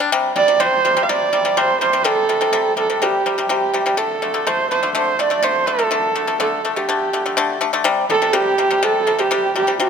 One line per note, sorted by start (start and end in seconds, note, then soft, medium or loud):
0.00 0.09 D4 medium
0.12 0.31 C3 loud
0.12 0.31 G3 loud
0.36 0.45 C3 medium
0.36 0.46 G3 medium
0.36 0.62 D5 loud
0.48 0.57 C3 medium
0.48 0.57 G3 medium
0.60 0.79 C3 medium
0.60 0.79 G3 medium
0.60 1.04 C5 loud
0.85 0.94 C3 medium
0.85 0.94 G3 medium
0.97 1.06 C3 medium
0.97 1.06 G3 medium
1.03 1.11 F5 medium
1.09 1.28 C3 medium
1.09 1.28 G3 medium
1.09 1.59 D5 medium
1.33 1.42 C3 medium
1.33 1.42 G3 medium
1.45 1.54 C3 medium
1.45 1.54 G3 medium
1.57 1.76 C3 medium
1.57 1.76 G3 loud
1.57 1.80 C5 medium
1.81 1.91 C3 medium
1.81 1.91 G3 medium
1.81 2.07 C5 medium
1.93 2.03 C3 medium
1.93 2.03 G3 medium
2.04 2.24 C3 medium
2.04 2.24 G3 loud
2.04 2.78 A4 medium
2.29 2.39 C3 medium
2.29 2.39 G3 medium
2.41 2.51 C3 medium
2.41 2.51 G3 medium
2.53 2.72 C3 medium
2.53 2.73 G3 loud
2.77 2.87 C3 medium
2.77 2.87 G3 medium
2.77 3.05 A4 medium
2.90 2.99 C3 medium
2.90 2.99 G3 medium
3.02 3.21 C3 medium
3.02 3.21 G3 medium
3.02 3.50 G4 medium
3.26 3.36 C3 medium
3.26 3.36 G3 medium
3.38 3.48 C3 medium
3.38 3.48 G3 medium
3.49 3.69 C3 medium
3.49 3.69 G3 loud
3.49 4.00 G4 medium
3.74 3.84 C3 medium
3.74 3.84 G3 medium
3.86 3.96 C3 medium
3.86 3.96 G3 medium
3.97 4.17 D3 medium
3.97 4.17 A3 medium
3.97 4.48 A4 medium
4.22 4.32 D3 medium
4.22 4.32 A3 medium
4.34 4.44 D3 medium
4.34 4.44 A3 medium
4.47 4.66 D3 medium
4.47 4.66 A3 loud
4.47 4.70 C5 medium
4.71 4.81 D3 medium
4.71 4.81 A3 medium
4.71 4.93 C5 medium
4.83 4.93 D3 medium
4.83 4.93 A3 medium
4.95 5.14 D3 medium
4.95 5.14 A3 medium
4.95 5.21 C5 medium
5.19 5.29 D3 medium
5.19 5.29 A3 medium
5.19 5.45 D5 medium
5.30 5.41 D3 medium
5.30 5.41 A3 medium
5.43 5.63 D3 medium
5.43 5.63 A3 loud
5.43 5.69 C5 medium
5.67 5.77 D3 medium
5.67 5.77 A3 medium
5.67 6.40 A4 medium
5.79 5.89 D3 medium
5.79 5.89 A3 medium
5.91 6.11 D3 medium
5.91 6.11 A3 medium
6.15 6.26 D3 medium
6.15 6.26 A3 medium
6.27 6.38 D3 medium
6.27 6.38 A3 medium
6.40 6.60 D3 medium
6.40 6.60 A3 medium
6.40 6.79 A4 medium
6.65 6.74 D3 medium
6.65 6.75 A3 medium
6.76 6.86 D3 medium
6.76 6.86 A3 medium
6.76 7.62 G4 medium
6.89 7.08 D3 medium
6.89 7.08 A3 medium
7.13 7.23 D3 medium
7.13 7.23 A3 medium
7.26 7.35 D3 medium
7.26 7.35 A3 medium
7.37 7.57 D3 loud
7.37 7.57 A3 loud
7.61 7.71 D3 medium
7.61 7.71 A3 medium
7.73 7.83 D3 medium
7.73 7.83 A3 loud
7.84 8.04 C3 loud
7.84 8.05 G3 loud
8.10 8.19 C3 medium
8.10 8.20 G3 medium
8.10 8.35 A4 loud
8.22 8.32 C3 medium
8.22 8.32 G3 medium
8.33 8.53 C3 medium
8.33 8.53 G3 medium
8.33 8.86 G4 medium
8.58 8.68 C3 medium
8.58 8.68 G3 medium
8.71 8.80 C3 medium
8.71 8.80 G3 medium
8.83 9.02 C3 medium
8.83 9.02 G3 loud
8.83 9.22 A4 loud
9.07 9.16 C3 medium
9.07 9.17 G3 medium
9.19 9.28 C3 medium
9.19 9.29 G3 medium
9.19 9.56 G4 medium
9.31 9.50 C3 medium
9.31 9.51 G3 loud
9.56 9.65 C3 medium
9.56 9.65 G3 medium
9.56 9.79 G4 medium
9.67 9.77 C3 medium
9.67 9.77 G3 medium
9.80 9.89 C3 medium
9.80 9.89 G3 medium
9.80 9.89 D4 medium